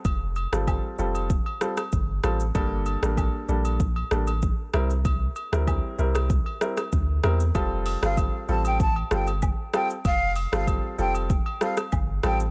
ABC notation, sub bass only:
X:1
M:4/4
L:1/16
Q:1/4=96
K:F
V:1 name="Sub bass" clef=bass
F,,,3 G,,,2 z F,,,3 z3 G,,,2 A,,,2 | G,,,3 A,,,2 z B,,,4 A,,,3 z C,,2- | C,,2 z D,,2 z C,,3 z3 D,,2 E,,2 | F,,,3 G,,,2 z A,,,4 G,,,3 z3 |
F,,,3 G,,,2 z F,,,3 z3 G,,,2 A,,,2 |]